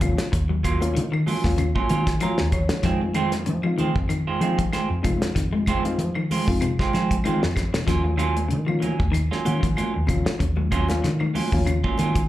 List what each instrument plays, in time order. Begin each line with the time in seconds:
Already playing: fingered electric bass D#2
0.00 clean electric guitar C3, reed electric piano F#3 A#3 C#4 F4, muted clean electric guitar stroke, kick, closed hi-hat, high conga, low conga, claves
0.17 muted clean electric guitar stroke, snare, closed hi-hat
0.32 fingered electric bass D#2, muted clean electric guitar stroke, kick, closed hi-hat
0.49 clean electric guitar F#3, muted clean electric guitar stroke
0.63 clean electric guitar F#3 A#3 F4, muted clean electric guitar stroke, kick, closed hi-hat, claves
0.81 reed electric piano F#3 A#3 C#4 F4, muted clean electric guitar stroke, closed hi-hat, high conga
0.95 clean electric guitar D#3, fingered electric bass D#3, closed hi-hat
1.12 clean electric guitar D#3, muted clean electric guitar stroke, claves
1.26 clean electric guitar F#3 A#3 C#4 F4, muted fingered electric bass stroke, open hi-hat, high conga, low conga
1.44 fingered electric bass D#2, reed electric piano F#3 A#3 C#4 F4, muted clean electric guitar stroke, kick, snare
1.58 clean electric guitar C#3, muted clean electric guitar stroke, closed hi-hat, claves
1.75 clean electric guitar F#3 A#3 C#4 F4, kick, high conga
1.89 fingered electric bass D#3, clean electric guitar F#3 A#3 C#4 F4, closed hi-hat, high conga
2.07 kick, snare, closed hi-hat
2.20 clean electric guitar F3 F#3 A#3 C#4 F4, reed electric piano F#3 A#3 C#4 F4 A#5, closed hi-hat, high conga, claves
2.38 fingered electric bass D#2, muted clean electric guitar stroke, snare
2.52 reed electric piano C#5, muted clean electric guitar stroke, kick, closed hi-hat, low conga, claves
2.69 clean electric guitar C#3, muted clean electric guitar stroke, snare, closed hi-hat
2.83 fingered electric bass F2, clean electric guitar D#3 F3 G#3 C4, reed electric piano G#3 C4 D#4 F4, muted clean electric guitar stroke, kick, snare, closed hi-hat
3.01 muted clean electric guitar stroke, high conga
3.14 clean electric guitar D#3 G#3 C4 F4, closed hi-hat, claves
3.32 muted clean electric guitar stroke, snare, closed hi-hat, high conga
3.46 clean electric guitar C#3, fingered electric bass F3, closed hi-hat
3.63 clean electric guitar F3, reed electric piano G#3 C4 D#4 F4, muted clean electric guitar stroke, claves
3.78 clean electric guitar D#3 G#3 C4 F4, muted fingered electric bass stroke, closed hi-hat, high conga, low conga
3.96 fingered electric bass F2, muted clean electric guitar stroke, kick
4.09 clean electric guitar D#3, muted clean electric guitar stroke, closed hi-hat, claves
4.27 clean electric guitar D#3 G#3 C4 F4
4.40 clean electric guitar D#3 G#3 C4, fingered electric bass F3, reed electric piano G#3 C4 D#4 F4, muted clean electric guitar stroke, closed hi-hat, high conga
4.58 clean electric guitar F3, kick, closed hi-hat
4.72 clean electric guitar D#3 G#3 C4 F4, snare, closed hi-hat, high conga, claves
4.90 fingered electric bass F2, muted clean electric guitar stroke
5.02 clean electric guitar C3, reed electric piano G#3 C4 D#4 F4, muted clean electric guitar stroke, kick, closed hi-hat, high conga, low conga, claves
5.22 muted clean electric guitar stroke, snare, closed hi-hat
5.35 fingered electric bass F2, clean electric guitar D#3, kick, snare, closed hi-hat
5.53 clean electric guitar G#3, muted clean electric guitar stroke, high conga
5.66 clean electric guitar D#3 G#3 C4 F4, kick, closed hi-hat, claves
5.84 reed electric piano G#3 C4 D#4 F4, muted clean electric guitar stroke, closed hi-hat, high conga
5.98 fingered electric bass F3, closed hi-hat
6.15 clean electric guitar D#3, muted clean electric guitar stroke, claves
6.30 clean electric guitar D#3 G#3 C4 F4, muted fingered electric bass stroke, open hi-hat, high conga, low conga
6.47 fingered electric bass F2, reed electric piano G#3 C4 D#4 F4, muted clean electric guitar stroke, kick
6.61 clean electric guitar C3, muted clean electric guitar stroke, closed hi-hat, claves
6.79 clean electric guitar D#3 G#3 C4 F4, kick, snare
6.93 clean electric guitar D#3 G#3 C4 F4, fingered electric bass F3, snare, closed hi-hat, high conga
7.11 kick, closed hi-hat
7.24 clean electric guitar D#3 G#3 C4 F4, reed electric piano G#3 C4 D#4 F4, closed hi-hat, high conga, low conga, claves
7.42 fingered electric bass F2, muted clean electric guitar stroke, snare
7.56 muted clean electric guitar stroke, kick, snare, closed hi-hat, low conga, claves
7.73 clean electric guitar C3, muted clean electric guitar stroke, snare, closed hi-hat
7.87 fingered electric bass D#2, clean electric guitar F3 F#3 A#3 C#4 F4, reed electric piano F#3 A#3 C#4 F4, kick, snare, closed hi-hat
8.04 muted clean electric guitar stroke, high conga
8.17 clean electric guitar D#3 F#3 A#3 C#4 F4, closed hi-hat, claves
8.36 muted clean electric guitar stroke, closed hi-hat, high conga
8.48 clean electric guitar C#3, closed hi-hat
8.52 fingered electric bass D#3
8.66 clean electric guitar F3, reed electric piano F#3 A#3 C#4 F4, muted clean electric guitar stroke, high conga, claves
8.80 clean electric guitar D#3 F#3 A#3 C#4, muted clean electric guitar stroke, muted fingered electric bass stroke, closed hi-hat, high conga, low conga
8.99 fingered electric bass D#2, muted clean electric guitar stroke, kick
9.12 clean electric guitar D#3, muted clean electric guitar stroke, closed hi-hat, claves
9.31 clean electric guitar F#3 A#3 C#4 F4, snare
9.45 fingered electric bass D#3, clean electric guitar F#3 A#3 C#4 F4, reed electric piano F#3 A#3 C#4 F#4, closed hi-hat, high conga
9.61 clean electric guitar F3, kick, closed hi-hat
9.76 clean electric guitar F#3 A#3 C#4 F4, closed hi-hat, high conga, claves
9.94 fingered electric bass D#2, muted clean electric guitar stroke
10.07 clean electric guitar C3, reed electric piano F#3 A#3 C#4 F4, muted clean electric guitar stroke, kick, closed hi-hat, low conga, claves
10.25 muted clean electric guitar stroke, snare, closed hi-hat
10.39 fingered electric bass D#2, clean electric guitar C#3, kick, closed hi-hat
10.56 clean electric guitar F#3, muted clean electric guitar stroke, high conga
10.71 clean electric guitar F#3 A#3 C#4 F4, kick, closed hi-hat, claves
10.89 reed electric piano F#3 A#3 C#4 F4, muted clean electric guitar stroke, snare, closed hi-hat, high conga
11.04 clean electric guitar D#3, fingered electric bass D#3, snare, closed hi-hat
11.20 clean electric guitar D#3, muted clean electric guitar stroke, high conga, claves
11.34 clean electric guitar F#3 A#3 C#4 F4, muted fingered electric bass stroke, open hi-hat, high conga, low conga
11.52 fingered electric bass D#2, reed electric piano F#3 A#3 C#4 F4, muted clean electric guitar stroke, kick
11.66 clean electric guitar C#3, muted clean electric guitar stroke, closed hi-hat, claves
11.83 clean electric guitar F#3 A#3 C#4 F4, kick, high conga
11.98 fingered electric bass D#3, clean electric guitar F#3 A#3 C#4 F4, closed hi-hat, high conga
12.15 kick, closed hi-hat